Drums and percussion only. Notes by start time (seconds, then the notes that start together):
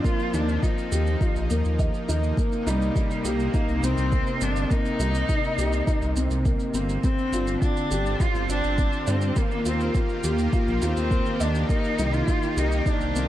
0.04 kick, shaker
0.19 shaker
0.34 shaker
0.49 shaker
0.63 kick, shaker
0.78 shaker
0.92 shaker
1.07 shaker
1.21 kick, shaker
1.36 shaker
1.50 shaker
1.65 shaker
1.79 kick, shaker
1.94 shaker
2.09 shaker
2.24 shaker
2.37 kick, shaker
2.52 shaker
2.67 shaker
2.82 shaker
2.96 kick, shaker
3.11 shaker
3.25 shaker
3.39 shaker
3.54 kick, shaker
3.68 shaker
3.83 shaker
3.98 shaker
4.12 kick, shaker
4.27 shaker
4.41 shaker
4.56 shaker
4.71 kick, shaker
4.85 shaker
5.00 shaker
5.15 shaker
5.29 kick, shaker
5.44 shaker
5.58 shaker
5.73 shaker
5.87 kick, shaker
6.02 shaker
6.16 shaker
6.31 shaker
6.45 kick, shaker
6.60 shaker
6.74 shaker
6.89 shaker
7.04 kick, shaker
7.18 shaker
7.33 shaker
7.47 shaker
7.62 kick, shaker
7.77 shaker
7.91 shaker
8.06 shaker
8.20 kick, shaker
8.35 shaker
8.49 shaker
8.64 shaker
8.78 kick, shaker
8.93 shaker
9.07 shaker
9.21 shaker
9.36 kick, shaker
9.51 shaker
9.66 shaker
9.80 shaker
9.95 kick, shaker
10.09 shaker
10.24 shaker
10.38 shaker
10.53 kick, shaker
10.68 shaker
10.82 shaker
10.97 shaker
11.11 kick, shaker
11.26 shaker
11.40 shaker
11.55 shaker
11.69 kick, shaker
11.84 shaker
11.99 shaker
12.13 shaker
12.28 kick, shaker
12.43 shaker
12.57 shaker
12.72 shaker
12.86 kick, shaker
13.01 shaker
13.16 shaker